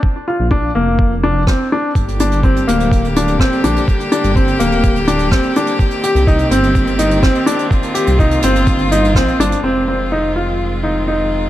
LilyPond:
<<
  \new Staff \with { instrumentName = "Upright piano" } { \time 4/4 \key f \dorian \tempo 4 = 125 r8 f'8 d'8 bes4 d'8 c'8 d'8 | r8 d'8 c'8 bes4 d'8 c'8 d'8 | r8 d'8 c'8 bes4 d'8 c'8 d'8 | r8 g'8 ees'8 c'4 ees'8 c'8 d'8 |
r8 g'8 ees'8 c'4 ees'8 c'8 d'8 | c'8 c'8 ees'8 f'4 ees'8 ees'4 | }
  \new Staff \with { instrumentName = "String quartet" } { \time 4/4 \key f \dorian << { r1 | g'1~ | g'1~ | g'1 |
f'1 | f'1 | } \\ { r1 | <d g bes>1~ | <d g bes>1 | <ees c'>1~ |
<ees c'>1 | <ees aes c'>1 | } >> }
  \new Staff \with { instrumentName = "Detuned saw bass" } { \clef bass \time 4/4 \key f \dorian r8. bes,,8 r16 f,,4. r4 | g,,4~ g,,16 r16 d,,4. r8 bes,,16 r16 | r8. g,,8 r16 d,,4. r4 | r8. c,8 r16 g,,4. r4 |
r8. c,8 r16 g,,4. bes,,16 r16 g,,16 r16 | f,,1 | }
  \new DrumStaff \with { instrumentName = "Drums" } \drummode { \time 4/4 bd4 bd4 bd4 <bd ss>4 | <hh bd>16 hh16 hh16 hh16 <hh bd>16 hh16 hh16 hh16 <hh bd>16 hh16 hh16 hh16 <hh bd ss>16 hh16 hh16 hh16 | <hh bd>16 hh16 hh16 hh16 <hh bd>16 hh16 hh16 hh16 <hh bd>16 hh16 hh16 hh16 <hh bd ss>16 hh16 hh16 hh16 | <hh bd>16 hh16 hh16 hh16 <hh bd>16 hh16 hh16 hh16 <hh bd>16 hh16 hh16 hh16 <hh bd ss>16 hh16 hh16 hh16 |
<hh bd>16 hh16 hh16 hh16 <hh bd>16 hh16 hh16 hh16 <hh bd>16 hh16 hh16 hh16 <hh bd ss>16 hh16 hh16 hh16 | r4 r4 r4 r4 | }
>>